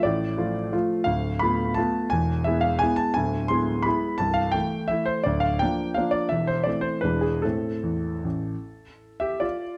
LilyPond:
<<
  \new Staff \with { instrumentName = "Grand piano" } { \time 3/4 \key d \minor \tempo 4 = 170 d''4. r4. | \key a \minor f''4 b''4 a''4 | gis''4 e''8 f''8 gis''8 a''8 | gis''4 c'''4 b''4 |
a''8 f''8 g''4 e''8 c''8 | d''8 f''8 g''4 f''8 d''8 | e''8 c''8 d''8 c''8 b'8 gis'8 | a'2.~ |
a'4. <g' e''>8 <f' d''>4 | }
  \new Staff \with { instrumentName = "Grand piano" } { \clef bass \time 3/4 \key d \minor <a,, a,>4 <f a f'>4 <f a f'>4 | \key a \minor <d,, d,>4 <a b f'>4 <a b f'>4 | <e,, e,>4 <gis b e'>4 <gis b e'>4 | <d,, d,>4 <gis b e'>4 <gis b e'>4 |
<c,, c,>4 <e a e'>4 <e a e'>4 | <d,, d,>4 <f bes d'>4 <f bes d'>4 | <e,, e,>4 <e a c'>4 <e,, e, e gis d'>4 | <a, a c'>4 e,4 a,,4 |
r2. | }
>>